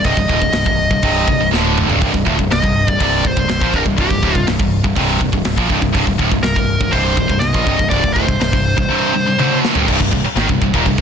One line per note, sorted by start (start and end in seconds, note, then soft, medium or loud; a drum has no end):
0.04 0.16 C1 medium
0.04 0.17 C2 medium
0.04 0.17 G2 medium
0.04 1.49 D#5 medium
0.04 kick loud
0.04 open hi-hat medium
0.17 0.28 C1 medium
0.17 0.29 C2 medium
0.17 0.30 G2 medium
0.17 kick medium
0.29 0.41 D1 medium
0.29 0.41 D2 medium
0.29 0.41 A2 loud
0.29 kick medium
0.42 0.50 C1 medium
0.42 0.53 C2 medium
0.42 0.54 G2 medium
0.42 kick medium
0.51 0.64 C1 medium
0.51 0.65 C2 medium
0.51 snare loud
0.51 open hi-hat medium
0.55 0.66 G2 medium
0.65 0.89 C1 medium
0.65 0.86 C2 medium
0.65 0.86 G2 medium
0.65 kick medium
0.91 1.02 C1 medium
0.91 1.01 C2 medium
0.91 1.02 G2 medium
0.91 kick medium
1.02 1.26 C1 loud
1.02 1.27 C2 medium
1.02 1.27 G2 medium
1.02 1.27 C3 loud
1.02 kick medium
1.02 open hi-hat medium
1.28 1.38 C1 medium
1.28 1.39 C2 medium
1.28 1.39 G2 medium
1.28 kick medium
1.39 1.51 C1 medium
1.39 1.52 C2 medium
1.39 1.53 G2 medium
1.51 1.86 D1 medium
1.51 1.88 D2 medium
1.51 1.89 A2 medium
1.51 1.89 D3 medium
1.51 snare medium
1.78 mid tom medium
1.88 2.00 C1 medium
1.88 2.00 C2 medium
1.88 2.01 G2 medium
1.88 floor tom medium
2.01 2.13 C1 medium
2.01 2.12 C2 medium
2.01 2.13 G2 loud
2.01 kick loud
2.01 open hi-hat medium
2.13 2.25 C1 medium
2.13 2.26 C2 medium
2.13 2.26 G2 medium
2.13 kick medium
2.26 2.37 D1 medium
2.26 2.38 D2 medium
2.26 2.38 A2 loud
2.26 kick medium
2.39 2.50 C1 medium
2.39 2.49 C2 medium
2.39 2.50 G2 medium
2.39 kick medium
2.50 2.62 C1 medium
2.50 2.61 C2 medium
2.50 2.62 G2 medium
2.50 2.89 D#5 medium
2.50 snare loud
2.50 open hi-hat medium
2.62 2.86 C1 medium
2.62 2.82 C2 medium
2.62 2.83 G2 medium
2.62 kick medium
2.87 2.99 C1 medium
2.87 2.97 C2 medium
2.87 2.98 G2 medium
2.87 3.02 D5 medium
2.87 kick loud
2.99 3.23 C1 medium
2.99 3.23 C2 medium
2.99 3.23 G2 loud
2.99 3.24 C3 medium
2.99 3.26 D5 loud
2.99 kick medium
2.99 open hi-hat medium
3.24 3.36 C1 medium
3.24 3.35 C2 medium
3.24 3.35 G2 medium
3.24 3.76 C5 loud
3.24 kick medium
3.36 3.48 C1 medium
3.36 3.47 C2 medium
3.36 3.47 G2 medium
3.36 kick medium
3.48 3.60 C1 medium
3.48 3.60 C2 medium
3.48 3.61 G2 medium
3.48 snare loud
3.48 open hi-hat medium
3.60 3.72 A#1 medium
3.60 3.72 A#2 medium
3.60 3.73 F3 medium
3.60 kick loud
3.73 3.85 C1 medium
3.73 3.83 C2 medium
3.73 3.84 G2 medium
3.73 3.81 A#4 medium
3.73 kick medium
3.84 3.97 C1 medium
3.84 3.95 C2 medium
3.84 3.96 G2 medium
3.84 kick medium
3.96 4.09 C1 medium
3.96 4.08 C2 medium
3.96 4.08 G2 loud
3.96 kick medium
3.96 open hi-hat medium
4.00 4.45 G4 medium
4.09 4.22 C1 medium
4.09 4.22 C2 medium
4.09 4.22 G2 medium
4.09 kick medium
4.22 4.34 D1 medium
4.22 4.34 D2 medium
4.22 4.35 A2 loud
4.22 kick medium
4.35 4.47 C1 medium
4.35 4.46 C2 medium
4.35 4.47 G2 medium
4.35 kick medium
4.47 4.58 C1 medium
4.47 4.59 C2 medium
4.47 4.59 G2 medium
4.47 snare medium
4.47 open hi-hat medium
4.59 4.82 C1 medium
4.59 4.79 C2 medium
4.59 4.80 G2 medium
4.59 kick medium
4.84 4.95 C1 medium
4.84 4.95 C2 medium
4.84 4.96 G2 medium
4.84 kick medium
4.96 5.19 C1 medium
4.96 5.19 C2 medium
4.96 5.20 G2 loud
4.96 5.21 C3 loud
4.96 kick loud
4.96 open hi-hat medium
5.20 5.32 C1 medium
5.20 5.32 C2 medium
5.20 5.32 G2 medium
5.20 kick medium
5.33 5.44 C1 medium
5.33 5.44 C2 medium
5.33 5.44 G2 medium
5.33 kick medium
5.45 5.56 C1 medium
5.45 5.56 C2 medium
5.45 5.57 G2 medium
5.45 snare loud
5.45 open hi-hat medium
5.56 5.69 A#1 loud
5.56 5.68 A#2 medium
5.56 5.69 F3 medium
5.56 kick loud
5.68 5.81 C1 medium
5.68 5.80 C2 medium
5.68 5.80 G2 loud
5.68 kick medium
5.81 5.94 C1 medium
5.81 5.91 C2 medium
5.81 5.92 G2 medium
5.81 kick medium
5.92 6.06 C1 medium
5.92 6.05 C2 medium
5.92 6.06 G2 loud
5.92 kick medium
5.92 open hi-hat medium
6.06 6.18 C1 medium
6.06 6.17 C2 medium
6.06 6.18 G2 medium
6.06 kick medium
6.18 6.30 D1 medium
6.18 6.30 D2 medium
6.18 6.30 A2 loud
6.18 kick medium
6.31 6.43 C1 medium
6.31 6.42 C2 medium
6.31 6.42 G2 medium
6.31 kick medium
6.43 6.55 C1 medium
6.43 6.55 C2 medium
6.43 6.55 G2 medium
6.43 6.94 A#4 medium
6.43 snare loud
6.43 open hi-hat medium
6.55 6.78 C1 medium
6.55 6.75 C2 medium
6.55 6.76 G2 medium
6.55 kick medium
6.80 6.92 C1 medium
6.80 6.92 C2 medium
6.80 6.92 G2 medium
6.80 kick medium
6.92 7.16 C1 loud
6.92 7.16 C2 medium
6.92 7.17 G2 medium
6.92 7.17 C3 loud
6.92 7.39 C5 loud
6.92 kick medium
6.92 open hi-hat medium
7.17 7.28 C1 medium
7.17 7.30 C2 medium
7.17 7.30 G2 medium
7.17 kick medium
7.29 7.41 C1 medium
7.29 7.42 C2 medium
7.29 7.42 G2 medium
7.29 kick medium
7.40 7.54 C1 medium
7.40 7.55 C2 medium
7.40 7.55 G2 medium
7.40 7.89 D#5 loud
7.40 snare loud
7.40 open hi-hat soft
7.54 7.66 A#1 medium
7.54 7.66 A#2 loud
7.54 7.67 F3 loud
7.54 kick loud
7.67 7.78 C1 medium
7.67 7.78 C2 medium
7.67 7.78 G2 medium
7.67 kick medium
7.79 7.90 C1 medium
7.79 7.89 C2 medium
7.79 7.90 G2 medium
7.79 kick medium
7.90 8.03 C1 medium
7.90 8.02 C2 medium
7.90 8.03 G2 loud
7.90 8.13 D5 loud
7.90 kick medium
7.90 open hi-hat medium
8.03 8.15 C1 medium
8.03 8.15 C2 medium
8.03 8.16 G2 medium
8.03 kick medium
8.13 8.27 D1 medium
8.13 8.27 D2 medium
8.13 8.28 A2 loud
8.13 9.58 C5 medium
8.13 kick medium
8.28 8.39 C1 medium
8.28 8.39 C2 medium
8.28 8.39 G2 medium
8.28 kick medium
8.40 8.51 C1 medium
8.40 8.51 C2 medium
8.40 8.51 G2 medium
8.40 snare loud
8.40 open hi-hat medium
8.52 8.76 C1 medium
8.52 8.72 C2 medium
8.52 8.72 G2 medium
8.52 kick medium
8.77 8.89 C1 medium
8.77 8.87 C2 medium
8.77 8.88 G2 medium
8.77 kick medium
8.88 9.13 C2 medium
8.88 9.13 G2 medium
8.88 9.14 C3 loud
9.14 9.24 C2 medium
9.14 9.25 G2 medium
9.26 9.38 C2 medium
9.26 9.38 G2 medium
9.38 9.74 D2 medium
9.38 9.75 A2 loud
9.38 9.75 D3 medium
9.38 high tom medium
9.65 snare medium
9.75 9.87 C2 medium
9.75 9.87 G2 medium
9.75 floor tom medium
9.88 9.99 C1 medium
9.88 9.99 C2 medium
9.88 9.98 G2 loud
9.88 kick loud
9.88 crash loud
9.88 china medium
10.00 10.11 C1 medium
10.00 10.11 C2 medium
10.00 10.11 G2 medium
10.00 kick medium
10.12 10.23 C1 medium
10.12 10.23 C2 medium
10.12 10.24 G2 medium
10.12 kick medium
10.24 muted distorted electric guitar stroke medium
10.24 muted picked electric bass stroke soft
10.36 10.48 G#1 medium
10.36 10.48 G#2 medium
10.36 10.48 D#3 loud
10.36 snare loud
10.36 china medium
10.49 10.60 C1 medium
10.49 10.60 C2 medium
10.49 10.61 G2 medium
10.49 kick loud
10.61 10.73 C1 medium
10.61 10.73 C2 medium
10.61 10.74 G2 medium
10.61 kick medium
10.74 10.85 D#1 loud
10.74 10.85 D#2 loud
10.74 10.86 A#2 medium
10.74 kick medium
10.86 10.97 C1 medium
10.86 10.97 C2 medium
10.86 10.98 G2 medium
10.86 kick medium
10.86 china medium